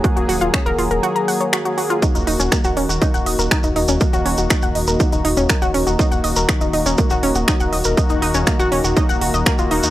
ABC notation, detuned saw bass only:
X:1
M:4/4
L:1/16
Q:1/4=121
K:Ebm
V:1 name="Detuned saw bass" clef=bass
z E,,, E,,, E,,, z E,,, E,,, E,,, z8 | z E,,, E,,, E,,, z E,,, E,,, E,,, z E,,, E,,, E,,, z E,,, E,,, E,,, | z E,,, E,,, E,,, z E,,, E,,, E,,, z E,,, E,,, E,,, z E,,, E,,, E,,, | z E,,, E,,, E,,, z E,,, E,,, E,,, z E,,, E,,, E,,, z E,,, E,,, E,,, |
z E,,, E,,, E,,, z E,,, E,,, E,,, z E,,, E,,, E,,, z E,,, E,,, E,, |]